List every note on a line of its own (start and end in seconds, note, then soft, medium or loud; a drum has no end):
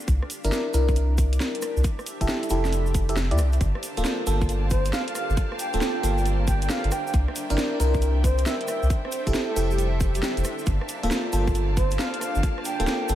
0.00 10.65 D4 medium
0.00 10.67 G4 medium
0.00 cabasa soft
0.07 0.20 C2 loud
0.07 13.15 C5 medium
0.07 kick loud
0.07 closed hi-hat medium
0.07 cabasa medium
0.22 cross-stick medium
0.30 open hi-hat loud
0.30 cabasa medium
0.43 0.51 G1 medium
0.43 0.72 D4 medium
0.43 0.72 E4 medium
0.43 0.72 A#4 medium
0.43 3.61 E5 medium
0.43 closed hi-hat medium
0.43 cabasa soft
0.52 snare loud
0.52 cabasa soft
0.74 1.38 C2 loud
0.74 1.83 D4 medium
0.74 1.83 E4 medium
0.74 1.83 A#4 medium
0.74 open hi-hat loud
0.74 cabasa medium
0.88 kick loud
0.88 cabasa soft
0.96 closed hi-hat medium
0.96 cabasa soft
1.18 kick loud
1.18 open hi-hat loud
1.18 cabasa medium
1.33 closed hi-hat medium
1.33 cabasa soft
1.40 snare loud
1.40 cabasa soft
1.55 closed hi-hat medium
1.62 cross-stick medium
1.62 open hi-hat loud
1.62 cabasa medium
1.77 1.83 C2 loud
1.77 cabasa soft
1.84 kick loud
1.84 closed hi-hat medium
1.84 cabasa soft
1.99 cross-stick medium
1.99 cabasa soft
2.06 open hi-hat loud
2.06 cabasa medium
2.21 2.27 F1 medium
2.21 2.49 E4 medium
2.21 2.49 G4 medium
2.21 2.49 A4 medium
2.21 kick medium
2.21 closed hi-hat medium
2.21 cabasa soft
2.28 snare loud
2.28 cabasa soft
2.43 closed hi-hat soft
2.43 cabasa soft
2.50 3.33 F1 loud
2.50 3.06 E4 medium
2.50 3.06 G4 medium
2.50 3.06 A4 medium
2.50 open hi-hat loud
2.50 cabasa medium
2.65 snare medium
2.65 cabasa soft
2.72 closed hi-hat medium
2.72 cabasa soft
2.86 cabasa soft
2.94 kick loud
2.94 open hi-hat loud
2.94 cabasa medium
3.09 3.16 E4 medium
3.09 3.16 G4 medium
3.09 3.16 A4 medium
3.09 closed hi-hat medium
3.09 cabasa soft
3.17 snare loud
3.17 cabasa medium
3.31 3.40 F2 loud
3.31 3.38 E4 medium
3.31 3.38 G4 medium
3.31 3.38 D5 medium
3.31 closed hi-hat medium
3.38 3.59 C2 medium
3.38 cross-stick medium
3.38 open hi-hat loud
3.38 cabasa medium
3.52 closed hi-hat soft
3.52 cabasa soft
3.61 3.73 G1 loud
3.61 8.86 A#3 medium
3.61 8.86 D5 medium
3.61 6.88 F5 medium
3.61 6.88 A5 medium
3.61 kick loud
3.61 closed hi-hat medium
3.61 cabasa medium
3.75 6.92 F5 medium
3.75 cross-stick medium
3.83 open hi-hat loud
3.83 cabasa medium
3.97 4.04 D1 medium
3.97 4.25 A#3 medium
3.97 4.25 F4 medium
3.97 4.25 A4 medium
3.97 closed hi-hat medium
3.97 cabasa soft
4.04 snare loud
4.04 cabasa medium
4.27 4.91 G1 loud
4.27 5.70 A#3 medium
4.27 5.70 F4 medium
4.27 5.70 A4 medium
4.27 open hi-hat loud
4.27 cabasa medium
4.41 kick loud
4.41 cabasa soft
4.49 closed hi-hat medium
4.49 cabasa soft
4.70 4.90 C5 medium
4.70 kick loud
4.70 open hi-hat loud
4.70 cabasa medium
4.85 closed hi-hat medium
4.85 cabasa soft
4.93 5.02 F5 medium
4.93 snare loud
4.93 cabasa soft
5.08 5.13 F5 medium
5.08 closed hi-hat medium
5.15 5.34 F5 medium
5.15 cross-stick medium
5.15 open hi-hat loud
5.15 cabasa medium
5.30 5.36 G1 loud
5.30 cabasa soft
5.37 kick loud
5.37 closed hi-hat medium
5.37 cabasa medium
5.52 cross-stick medium
5.59 6.22 G5 medium
5.59 open hi-hat loud
5.59 cabasa medium
5.73 5.80 D1 medium
5.73 6.02 A#3 medium
5.73 6.02 F4 medium
5.73 6.02 A4 medium
5.73 closed hi-hat medium
5.73 cabasa soft
5.81 snare loud
5.81 cabasa medium
6.03 6.68 G1 loud
6.03 6.91 A#3 medium
6.03 6.91 F4 medium
6.03 6.91 A4 medium
6.03 open hi-hat loud
6.03 cabasa loud
6.18 cabasa soft
6.26 closed hi-hat medium
6.26 cabasa soft
6.47 6.57 G5 medium
6.47 kick loud
6.47 open hi-hat loud
6.47 cabasa medium
6.62 6.67 G5 medium
6.62 closed hi-hat medium
6.62 cabasa soft
6.70 6.90 F5 medium
6.70 snare loud
6.70 cabasa medium
6.84 6.91 G1 medium
6.84 closed hi-hat soft
6.91 8.88 E5 medium
6.91 7.01 G5 medium
6.91 10.63 G5 medium
6.91 cross-stick medium
6.91 open hi-hat loud
6.91 cabasa medium
7.06 7.11 G5 medium
7.06 cabasa soft
7.13 7.26 C2 loud
7.13 kick loud
7.13 closed hi-hat medium
7.13 cabasa medium
7.28 cross-stick medium
7.36 open hi-hat loud
7.36 cabasa loud
7.42 10.67 E5 medium
7.50 7.57 G1 medium
7.50 7.78 D4 medium
7.50 7.78 E4 medium
7.50 7.78 A#4 medium
7.50 closed hi-hat medium
7.50 cabasa soft
7.58 snare loud
7.58 cabasa medium
7.80 8.44 C2 medium
7.80 8.89 D4 medium
7.80 8.89 E4 medium
7.80 8.89 A#4 medium
7.80 open hi-hat loud
7.80 cabasa medium
7.94 kick loud
7.94 cabasa soft
8.02 closed hi-hat medium
8.02 cabasa medium
8.24 8.43 C5 medium
8.24 kick loud
8.24 open hi-hat loud
8.24 cabasa medium
8.38 closed hi-hat medium
8.38 cabasa soft
8.46 8.55 E5 medium
8.46 snare loud
8.46 cabasa medium
8.61 8.65 E5 medium
8.61 closed hi-hat soft
8.68 8.87 E5 medium
8.68 cross-stick medium
8.68 open hi-hat loud
8.68 cabasa medium
8.83 8.89 C2 loud
8.83 cabasa soft
8.90 10.65 A4 medium
8.90 10.65 C5 medium
8.90 10.65 E5 medium
8.90 kick loud
8.90 closed hi-hat medium
8.90 cabasa soft
9.05 9.10 C5 medium
9.05 cross-stick medium
9.12 9.21 C5 medium
9.12 open hi-hat medium
9.12 cabasa medium
9.27 9.33 F1 medium
9.27 9.55 E4 medium
9.27 9.55 G4 medium
9.27 9.55 A4 medium
9.27 kick medium
9.27 closed hi-hat medium
9.27 cabasa soft
9.34 snare loud
9.34 cabasa soft
9.49 9.65 A4 medium
9.56 10.21 F1 loud
9.56 10.66 E4 medium
9.56 10.66 G4 medium
9.56 10.66 A4 medium
9.56 open hi-hat loud
9.56 cabasa medium
9.71 9.87 G4 medium
9.71 cabasa soft
9.78 closed hi-hat medium
9.78 cabasa soft
10.00 kick loud
10.00 open hi-hat loud
10.00 cabasa loud
10.15 10.20 G4 medium
10.15 closed hi-hat medium
10.15 cabasa soft
10.23 10.32 G4 medium
10.23 snare loud
10.23 cabasa soft
10.37 10.44 F1 medium
10.37 closed hi-hat soft
10.37 cabasa soft
10.44 cross-stick medium
10.44 open hi-hat loud
10.44 cabasa medium
10.59 cabasa soft
10.66 10.79 G1 loud
10.66 13.15 A#3 medium
10.66 13.15 D4 medium
10.66 13.15 D5 medium
10.66 13.15 F5 medium
10.66 13.15 A5 medium
10.66 kick loud
10.66 closed hi-hat medium
10.66 cabasa medium
10.78 13.15 G4 medium
10.78 cross-stick medium
10.89 open hi-hat medium
10.89 cabasa medium
11.03 11.10 D1 medium
11.03 11.31 A#3 medium
11.03 11.31 F4 medium
11.03 11.31 A4 medium
11.03 closed hi-hat medium
11.03 cabasa soft
11.11 snare loud
11.11 cabasa medium
11.21 13.15 F5 medium
11.33 11.97 G1 loud
11.33 12.76 A#3 medium
11.33 12.76 F4 medium
11.33 12.76 A4 medium
11.33 open hi-hat loud
11.33 cabasa medium
11.47 kick loud
11.47 cabasa soft
11.55 closed hi-hat medium
11.55 cabasa soft
11.77 11.96 C5 loud
11.77 kick loud
11.77 open hi-hat loud
11.77 cabasa medium
11.91 closed hi-hat medium
11.91 cabasa soft
11.99 12.08 F5 medium
11.99 snare loud
11.99 cabasa soft
12.14 12.18 F5 medium
12.14 closed hi-hat medium
12.21 12.40 F5 medium
12.21 cross-stick medium
12.21 open hi-hat loud
12.21 cabasa medium
12.35 12.42 G1 loud
12.35 cabasa soft
12.43 kick loud
12.43 closed hi-hat medium
12.43 cabasa soft
12.58 cross-stick medium
12.65 13.15 G5 medium
12.65 open hi-hat loud
12.65 cabasa medium
12.80 12.86 D1 medium
12.80 13.08 A#3 medium
12.80 13.07 F4 medium
12.80 13.08 A4 medium
12.80 closed hi-hat medium
12.80 cabasa soft
12.87 snare loud
12.87 cabasa soft
13.09 13.15 G1 loud
13.09 13.15 A#3 medium
13.09 13.15 F4 medium
13.09 13.15 A4 medium
13.09 open hi-hat loud
13.09 cabasa medium